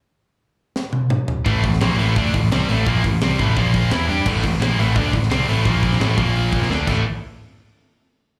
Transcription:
<<
  \new Staff \with { instrumentName = "Distorted electric guitar" } { \clef bass \time 4/4 \key a \minor \tempo 4 = 172 r1 | <a, e a>8 <a, e>8 <bes, f bes>8 <a, e a>8 <d a d'>8 <a, e>8 <c g c'>8 <a, e a>8 | <bes, f bes>8 <a, e>8 <c g c'>8 <a, e a>8 <bes, f bes>4 <e b e'>8 <g d' g'>8 | <a, e a>8 <a, e>8 <bes, f bes>8 <a, e a>8 <d a d'>8 <a, e>8 <c g c'>8 <a, e a>8 |
<bes, f bes>4 <a, e a>8 <bes, f bes>4. <d a d'>8 <a, e a>8 | r1 | }
  \new Staff \with { instrumentName = "Distorted electric guitar" } { \clef bass \time 4/4 \key a \minor r1 | <a, e a>8 <a, e>8 <bes, f bes>8 <a, e a>8 <d a d'>8 <a, e>8 <c g c'>8 <a, e a>8 | <bes, f bes>8 <a, e>8 <c g c'>8 <a, e a>8 <bes, f bes>4 <e b e'>8 <g d' g'>8 | <a, e a>8 <a, e>8 <bes, f bes>8 <a, e a>8 <d a d'>8 <a, e>8 <c g c'>8 <a, e a>8 |
<bes, f bes>4 <a, e a>8 <bes, f bes>4. <d a d'>8 <a, e a>8 | r1 | }
  \new Staff \with { instrumentName = "Picked electric bass" } { \clef bass \time 4/4 \key a \minor r1 | a,,8 a,,8 bes,,8 a,,8 d,8 a,,8 c,8 a,,8 | bes,,8 a,,8 c,8 a,,8 bes,,4 e,8 g,8 | a,,8 a,,8 bes,,8 a,,8 d,8 a,,8 c,8 a,,8 |
bes,,4 a,,8 bes,,4. d,8 a,,8 | r1 | }
  \new DrumStaff \with { instrumentName = "Drums" } \drummode { \time 4/4 r4 r4 sn8 tommh8 toml8 tomfh8 | <hho bd>8 <hho bd>16 sn16 <hho sn>8 hho8 <hho bd>8 <hho bd>8 <hho sn>8 hho8 | <hho bd>8 <hho bd>8 <hho sn>8 <hho bd>8 <hho bd>8 <hho bd>8 <hho sn>8 hho8 | <cymc bd>8 <hho bd>16 sn16 <hho sn>8 hho8 <hho bd>8 <hho bd>16 sn16 <hho sn>8 hho8 |
<hho bd>8 <hho bd>16 sn16 <hho sn>8 <hho bd>8 hho8 <hho bd>16 sn16 sn8 <cymc bd>8 | r4 r4 r4 r4 | }
>>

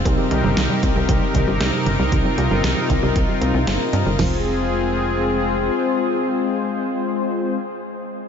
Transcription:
<<
  \new Staff \with { instrumentName = "Analog synth pad" } { \time 4/4 \key f \minor \tempo 4 = 116 << { <c ees' bes'>1~ | <c ees' bes'>1 | <c' f' aes'>1~ | <c' f' aes'>1 | } \\ { <c' g'>1 | f'1 | r1 | r1 | } >> }
  \new Staff \with { instrumentName = "Analog polysynth" } { \time 4/4 \key f \minor <g c' ees' bes'>4.~ <g c' ees' bes'>16 <g c' ees' bes'>2~ <g c' ees' bes'>16 | <g c' ees' bes'>4.~ <g c' ees' bes'>16 <g c' ees' bes'>2~ <g c' ees' bes'>16 | <aes c' f' c''>1~ | <aes c' f' c''>1 | }
  \new Staff \with { instrumentName = "Synth arpeggio sound" } { \clef bass \time 4/4 \key f \minor bes16 g16 ees16 g16 ees16 g16 bes16 g16 ees16 g16 ees16 g16 bes16 g16 ees16 g16 | ees16 g16 bes16 g16 ees16 g16 ees16 g16 bes16 g16 bes16 ees'16 g'16 bes16 c'16 g'16 | f8 r2. r8 | r1 | }
  \new Staff \with { instrumentName = "Analog synth bass" } { \clef bass \time 4/4 \key f \minor c,16 r16 c,16 g,,16 c,16 r16 c,16 c,16 c,16 r16 c,16 g,,16 c,16 r16 g,,16 c,16 | c,16 r16 c,16 g,,16 c,16 r16 c,16 c,16 c,16 r16 c,16 c,16 g,,16 r16 g,16 g,,16 | f,,2. r4 | r1 | }
  \new DrumStaff \with { instrumentName = "Drums" } \drummode { \time 4/4 <hh bd>8 hh8 <hh sn>8 <hh bd>8 <hh bd>8 <hh bd>8 <hh sn>8 hh8 | <hh bd>8 hh8 <hh sn>8 <hh bd>8 <hh bd>8 hh8 <hh sn>8 hh8 | <cymc sn tomfh>4 r4 r4 r4 | r4 r4 r4 r4 | }
>>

